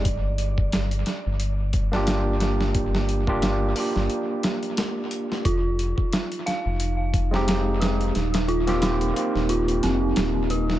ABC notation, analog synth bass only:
X:1
M:4/4
L:1/16
Q:"Swing 16ths" 1/4=89
K:Gphr
V:1 name="Analog synth bass" clef=bass
G,,,6 z G,,,8- G,,,- | G,,,6 z G,,, z8 | F,,,3 z4 F,,,8- F,,, | E,,,6 z E,,,3 F,,,2 E,,,4 |]